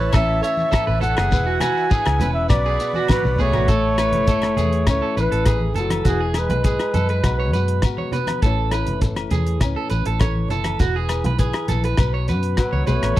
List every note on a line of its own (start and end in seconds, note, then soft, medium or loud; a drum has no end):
0.00 0.11 A1 medium
0.00 1.28 A2 medium
0.00 0.72 E3 medium
0.00 0.44 E4 medium
0.00 1.02 A4 medium
0.00 0.12 B4 medium
0.00 0.13 C#5 medium
0.00 1.29 C#5 medium
0.00 2.47 E5 medium
0.00 1.29 A5 medium
0.13 0.40 A1 loud
0.13 1.29 C#4 medium
0.13 0.42 A4 medium
0.13 0.42 E5 loud
0.13 kick medium
0.13 cross-stick medium
0.13 low agogo medium
0.13 shekere loud
0.43 0.71 C#5 medium
0.43 0.99 E5 loud
0.43 closed hi-hat medium
0.43 shekere medium
0.57 high conga medium
0.57 shekere soft
0.72 1.29 E3 medium
0.72 0.87 A4 medium
0.72 kick medium
0.72 cross-stick medium
0.72 low agogo medium
0.72 shekere medium
0.87 1.14 A1 medium
0.87 1.01 B4 medium
0.87 high conga medium
1.01 1.16 A4 medium
1.01 1.29 A4 medium
1.01 1.62 F#5 loud
1.01 closed hi-hat soft
1.01 low conga medium
1.01 shekere medium
1.17 1.32 F#1 medium
1.17 1.45 G#4 medium
1.17 cross-stick medium
1.17 low agogo medium
1.17 shekere soft
1.30 1.58 E1 medium
1.30 2.50 E3 medium
1.30 1.61 B4 medium
1.30 2.49 F#5 medium
1.30 2.49 G#5 medium
1.30 kick medium
1.30 low conga medium
1.30 shekere medium
1.46 1.60 F#4 medium
1.60 1.89 F#4 medium
1.60 2.47 B4 medium
1.60 2.33 G#5 loud
1.60 cross-stick medium
1.60 closed hi-hat medium
1.60 high conga medium
1.60 low conga medium
1.60 low agogo medium
1.60 shekere medium
1.77 shekere soft
1.91 2.20 D3 medium
1.91 2.19 G#4 medium
1.91 kick medium
1.91 shekere medium
2.06 2.19 C#2 medium
2.06 cross-stick medium
2.06 low agogo medium
2.20 2.47 E1 medium
2.20 2.49 C#3 medium
2.20 2.49 B4 medium
2.20 closed hi-hat medium
2.20 high conga medium
2.20 low conga medium
2.20 shekere medium
2.34 2.48 E5 medium
2.49 2.76 B1 medium
2.49 3.68 B2 medium
2.49 3.10 B4 medium
2.49 3.05 D5 loud
2.49 3.67 D5 medium
2.49 3.67 F#5 medium
2.49 3.67 B5 medium
2.49 kick medium
2.49 cross-stick medium
2.49 high conga medium
2.49 low agogo medium
2.49 shekere loud
2.65 2.94 G#4 medium
2.65 shekere soft
2.80 3.65 F#4 medium
2.80 closed hi-hat soft
2.80 shekere medium
2.93 3.23 F#4 medium
2.93 high conga medium
2.93 shekere soft
3.08 3.43 B4 medium
3.08 3.65 B4 medium
3.08 kick medium
3.08 snare soft
3.08 high conga medium
3.08 low agogo medium
3.08 shekere loud
3.12 3.42 F#3 medium
3.23 3.37 B1 medium
3.23 high tom medium
3.23 high conga medium
3.23 shekere soft
3.36 3.53 B1 medium
3.36 3.65 B3 medium
3.36 3.53 G#4 medium
3.36 mid tom medium
3.36 low conga medium
3.36 shekere medium
3.40 4.87 A3 loud
3.40 4.88 C#5 loud
3.52 3.67 A1 medium
3.52 3.68 F#4 medium
3.52 floor tom medium
3.52 low conga medium
3.52 low agogo medium
3.52 shekere soft
3.68 4.14 A1 medium
3.68 6.02 A2 medium
3.68 3.96 A4 medium
3.68 4.27 A4 medium
3.68 kick medium
3.68 closed hi-hat soft
3.68 shekere medium
3.98 5.76 E4 soft
3.98 4.26 B4 medium
3.98 cross-stick medium
3.98 closed hi-hat soft
3.98 low agogo medium
3.98 shekere medium
4.12 4.52 F#1 medium
4.12 closed hi-hat soft
4.12 high conga medium
4.12 low conga medium
4.27 4.56 A4 medium
4.27 5.46 A4 medium
4.27 kick medium
4.27 closed hi-hat soft
4.27 shekere medium
4.42 cross-stick medium
4.42 low agogo medium
4.57 4.87 E2 medium
4.57 5.17 E3 medium
4.57 4.85 G#4 medium
4.57 closed hi-hat soft
4.57 high conga medium
4.57 low conga medium
4.57 shekere medium
4.73 closed hi-hat soft
4.87 5.00 C#2 medium
4.87 6.02 C#4 medium
4.87 5.16 C#5 loud
4.87 kick medium
4.87 cross-stick medium
4.87 closed hi-hat soft
4.87 low agogo medium
4.87 shekere loud
4.91 5.17 A3 medium
5.02 5.16 A4 medium
5.17 5.30 A1 medium
5.17 6.03 E3 medium
5.17 5.73 E3 medium
5.17 5.31 B4 medium
5.17 5.61 B4 medium
5.17 closed hi-hat soft
5.17 shekere medium
5.32 5.45 A1 medium
5.32 5.45 A4 medium
5.32 closed hi-hat medium
5.46 5.76 A1 medium
5.46 5.75 G#4 medium
5.46 6.03 A4 medium
5.46 kick medium
5.46 cross-stick medium
5.46 closed hi-hat medium
5.46 low agogo medium
5.46 shekere loud
5.60 high conga medium
5.74 6.02 F#1 medium
5.74 6.03 E4 medium
5.74 6.04 A4 medium
5.74 closed hi-hat soft
5.74 low conga medium
5.74 shekere medium
5.79 6.05 F#3 medium
5.90 cross-stick medium
5.90 closed hi-hat soft
5.90 high conga medium
5.90 low agogo medium
6.05 6.50 E1 medium
6.05 6.40 E3 medium
6.05 6.94 E4 medium
6.05 6.20 F#4 medium
6.05 6.40 G#4 medium
6.05 muted nylon-string guitar stroke medium
6.05 kick medium
6.05 closed hi-hat medium
6.05 shekere medium
6.21 6.49 G#4 medium
6.34 6.65 G#4 medium
6.34 cross-stick medium
6.34 closed hi-hat soft
6.34 low agogo medium
6.34 shekere medium
6.39 8.15 G#3 medium
6.39 8.15 B4 medium
6.50 6.76 B1 medium
6.50 6.64 B4 medium
6.50 closed hi-hat medium
6.50 high conga medium
6.50 low conga medium
6.64 6.93 G#4 medium
6.64 7.21 G#4 medium
6.64 kick medium
6.64 closed hi-hat soft
6.64 shekere medium
6.80 cross-stick medium
6.80 low agogo medium
6.94 7.21 F#2 medium
6.94 7.21 E4 medium
6.94 7.09 A4 medium
6.94 closed hi-hat soft
6.94 high conga medium
6.94 low conga medium
6.94 shekere medium
7.09 7.38 B4 medium
7.09 closed hi-hat soft
7.23 7.53 B1 medium
7.23 8.42 B2 medium
7.23 7.54 F#4 medium
7.23 kick medium
7.23 cross-stick medium
7.23 closed hi-hat soft
7.23 low agogo medium
7.23 shekere medium
7.40 7.53 C#5 medium
7.53 7.80 F#2 medium
7.53 7.84 F#4 medium
7.53 7.82 B4 medium
7.53 closed hi-hat soft
7.53 shekere medium
7.68 closed hi-hat soft
7.82 8.40 F#4 medium
7.82 kick medium
7.82 cross-stick medium
7.82 closed hi-hat soft
7.82 low agogo medium
7.82 shekere medium
7.97 8.12 C#5 medium
7.97 high conga medium
8.12 8.40 B3 medium
8.12 8.41 B4 medium
8.12 closed hi-hat soft
8.12 low conga medium
8.12 shekere medium
8.27 cross-stick medium
8.27 closed hi-hat soft
8.27 high conga medium
8.27 low agogo medium
8.42 8.87 A1 medium
8.42 10.77 A2 medium
8.42 9.31 E3 medium
8.42 9.62 C#4 medium
8.42 8.73 E4 medium
8.42 8.71 A4 medium
8.42 kick medium
8.42 closed hi-hat soft
8.42 shekere medium
8.46 9.02 A4 medium
8.71 10.50 E4 medium
8.71 9.01 B4 medium
8.71 cross-stick medium
8.71 closed hi-hat soft
8.71 low agogo medium
8.71 shekere medium
8.86 9.27 F#1 medium
8.86 closed hi-hat soft
8.86 high conga medium
8.86 low conga medium
9.01 10.22 A4 medium
9.01 muted clean electric guitar stroke medium
9.01 kick medium
9.01 closed hi-hat medium
9.01 shekere medium
9.16 cross-stick medium
9.16 low agogo medium
9.31 9.61 E2 medium
9.31 9.91 E3 medium
9.31 9.60 G#4 medium
9.31 closed hi-hat soft
9.31 high conga medium
9.31 low conga medium
9.31 shekere medium
9.46 closed hi-hat soft
9.61 9.75 C#2 medium
9.61 10.78 C#4 medium
9.61 kick medium
9.61 cross-stick medium
9.61 closed hi-hat soft
9.61 low agogo medium
9.61 shekere medium
9.76 9.90 A4 medium
9.90 10.04 A1 medium
9.90 10.77 E3 medium
9.90 10.05 B4 medium
9.90 closed hi-hat soft
9.90 shekere medium
10.05 10.19 A1 medium
10.05 10.20 A4 medium
10.05 closed hi-hat medium
10.19 10.50 A1 medium
10.19 10.78 A4 medium
10.19 10.49 C#5 medium
10.19 kick medium
10.19 cross-stick medium
10.19 closed hi-hat soft
10.19 low agogo medium
10.19 shekere medium
10.35 high conga medium
10.48 10.77 F#1 medium
10.48 10.77 E4 medium
10.48 10.79 A4 medium
10.48 closed hi-hat soft
10.48 low conga medium
10.48 shekere medium
10.64 cross-stick medium
10.64 closed hi-hat soft
10.64 high conga medium
10.64 low agogo medium
10.79 11.25 E1 medium
10.79 11.99 E3 medium
10.79 10.94 F#4 medium
10.79 11.09 B4 medium
10.79 kick medium
10.79 closed hi-hat soft
10.79 shekere medium
10.96 11.24 G#4 medium
11.09 11.39 B4 medium
11.09 cross-stick medium
11.09 closed hi-hat soft
11.09 low agogo medium
11.09 shekere medium
11.24 11.51 B1 medium
11.24 11.39 B4 medium
11.24 closed hi-hat soft
11.24 high conga medium
11.24 low conga medium
11.39 11.68 G#4 medium
11.39 11.95 B4 medium
11.39 kick medium
11.39 closed hi-hat soft
11.39 shekere medium
11.53 cross-stick medium
11.53 low agogo medium
11.68 11.95 A#1 medium
11.68 11.95 E4 medium
11.68 11.83 A4 medium
11.68 closed hi-hat soft
11.68 high conga medium
11.68 low conga medium
11.68 shekere medium
11.84 12.13 B4 medium
11.84 closed hi-hat soft
11.97 12.30 B1 medium
11.97 13.17 B2 medium
11.97 13.14 B4 medium
11.97 kick medium
11.97 cross-stick medium
11.97 closed hi-hat soft
11.97 low agogo medium
11.97 shekere loud
12.14 12.28 C#5 medium
12.28 12.55 F#2 medium
12.28 12.58 F#4 medium
12.28 12.57 B4 medium
12.28 closed hi-hat soft
12.28 shekere medium
12.43 closed hi-hat medium
12.57 12.85 F#3 medium
12.57 13.14 F#4 medium
12.57 12.85 B4 medium
12.57 kick medium
12.57 cross-stick medium
12.57 closed hi-hat soft
12.57 low agogo medium
12.57 shekere medium
12.73 12.86 C#2 medium
12.73 12.87 C#5 medium
12.73 high conga medium
12.86 13.01 B1 medium
12.86 13.20 A3 medium
12.86 13.14 B3 medium
12.86 13.15 B4 medium
12.86 13.20 C#5 loud
12.86 closed hi-hat soft
12.86 low conga medium
12.86 shekere medium
13.03 13.16 A1 medium
13.03 cross-stick medium
13.03 closed hi-hat soft
13.03 high conga medium
13.03 low agogo medium
13.16 13.20 A4 medium
13.16 shekere medium